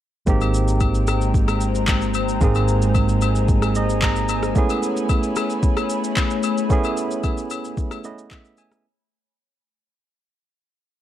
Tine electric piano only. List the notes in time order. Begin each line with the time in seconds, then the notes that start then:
0.26 G#3 A#3 C4 D#4 G4
2.41 G#3 A#3 C4 D#4 G#4
3.76 D#5
4.03 A#5
4.55 A3 B3 C#4 E4 G#4
6.69 A3 B3 C#4 E4 G#4
8.04 A3 B3 C#4 E4 B4 D#5
8.32 E5
8.58 G#5